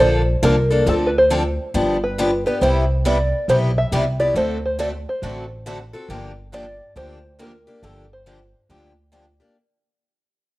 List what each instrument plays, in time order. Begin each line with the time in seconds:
0.00 upright bass A#1, steel-string acoustic guitar D3 F3 A#3 D4 A4, five-string banjo C5
0.43 upright bass C2, steel-string acoustic guitar D3 F3 A#3 D4 A4, five-string banjo A#4
0.70 steel-string acoustic guitar A#3 D4 A4
0.86 upright bass D2, steel-string acoustic guitar D3 F3 C4 D4 A4, five-string banjo A4
1.07 five-string banjo B4
1.18 five-string banjo C5
1.30 steel-string acoustic guitar D3 F3 C4 D4 A4
1.74 upright bass G1, steel-string acoustic guitar D3 F3 B3 D4 G4
2.04 five-string banjo B4
2.18 steel-string acoustic guitar D3 F3 B3 D4 G4
2.46 steel-string acoustic guitar B3 D4 G4, five-string banjo B4
2.61 upright bass C2, steel-string acoustic guitar C3 G3 B3 E4 G4, five-string banjo C5
3.05 steel-string acoustic guitar C3 G3 B3 E4 G4, five-string banjo D5
3.48 upright bass B1, steel-string acoustic guitar C3 G3 B3 E4 G4, five-string banjo C5
3.78 five-string banjo E5
3.92 upright bass C2, steel-string acoustic guitar C3 G3 B3 E4 G4
4.20 steel-string acoustic guitar B3 E4 G4, five-string banjo D5
4.35 upright bass D2, steel-string acoustic guitar D3 A3 C4 F#4 A4, five-string banjo C5
4.66 five-string banjo C5
4.79 steel-string acoustic guitar D3 A3 C4 F#4 A4, five-string banjo D5
5.09 five-string banjo C5
5.22 upright bass A1, steel-string acoustic guitar D3 A3 C4 F#4 A4
5.66 steel-string acoustic guitar D3 A3 C4 F#4 A4
5.93 steel-string acoustic guitar C4 F#4 A4
6.09 upright bass G1, steel-string acoustic guitar D3 F3 A#3 D4 G4
6.53 steel-string acoustic guitar D3 F3 A#3 D4 G4, five-string banjo D5
6.96 upright bass D2, steel-string acoustic guitar D3 F3 A#3 D4 G4, five-string banjo C5
7.39 steel-string acoustic guitar D3 F3 A#3 D4 G4, five-string banjo A#4
7.67 steel-string acoustic guitar A#3 D4 G4
7.82 upright bass G1, steel-string acoustic guitar D3 F3 A#3 D4 G4, five-string banjo A4
8.13 five-string banjo C5
8.26 steel-string acoustic guitar D3 F3 A#3 D4 G4
8.69 upright bass D2, steel-string acoustic guitar D3 F3 A#3 D4 G4
9.12 steel-string acoustic guitar D3 F3 A#3 D4 G4
9.40 steel-string acoustic guitar A#3 D4 G4